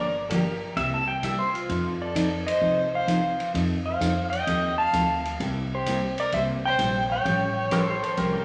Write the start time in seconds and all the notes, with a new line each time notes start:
Already playing: G1 A#4 D5
0.30 D3 F3 A#3 D4 G4 A#4, kick, hi-hat pedal, ride
0.76 C2 C3 G3 A#3 E4 G4 E5, kick, ride
0.94 A5
1.08 G5
1.23 C3 G3 A#3 E4 G4 E5, kick, hi-hat pedal, ride
1.39 C5
1.53 F4, ride
1.69 F2 F3 C4 D#4 A4, kick, ride
2.01 A4 D5
2.15 F3 C4 D#4 A4, kick, hi-hat pedal, ride
2.47 C5 D#5, ride
2.61 C2 F3 C4 D#4 A4, kick
2.93 C5 F5
3.07 F3 C4 D#4 A4, kick, hi-hat pedal, ride
3.40 ride
3.54 F2 F3 C4 D#4 A4, kick, ride
3.86 C5 F5
4.00 F2 F3 C4 D#4 A4, kick, hi-hat pedal, ride
4.30 D#5 G5, ride
4.47 D#2 F3 C4 D#4 A4, kick, ride
4.78 F5 A5
4.93 D2 F3 C4 D#4 A4, kick, hi-hat pedal, ride
5.25 ride
5.40 C2 C3 G3 A#3 E4 G4, kick, ride
5.73 G4 C5
5.86 C3 G3 A#3 E4 G4, kick, hi-hat pedal, ride
6.18 A#4 D5, ride
6.32 C2 C3 G3 A#3 E4 G4 C5 E5, kick, ride
6.65 C5 G5
6.79 A#1 C3 G3 A#3 E4 G4, kick, hi-hat pedal, ride
7.11 C#5 G5
7.25 A1 F3 G3 C#4 G4 A4, kick, ride
7.71 F3 G3 C#4 G4 A4 C5, kick, hi-hat pedal, ride
7.88 A4 C5
8.03 A4 C5, ride
8.17 C2 F3 G3 C#4 G4 A4 A#4, kick, ride
8.33 G4 A#4